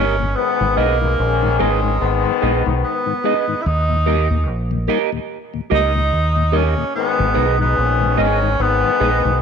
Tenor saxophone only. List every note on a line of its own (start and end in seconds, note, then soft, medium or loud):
0.00 0.37 C#4 medium
0.36 0.79 B3 medium
0.77 1.62 A#3 loud
1.60 2.42 G#3 medium
2.84 3.63 B3 medium
3.62 3.68 E4 medium
3.66 4.48 D#4 loud
5.74 6.57 D#4 loud
6.56 6.95 C#4 medium
6.95 7.56 B3 loud
7.61 8.21 B3 loud
8.20 8.63 C#4 medium
8.62 9.42 B3 loud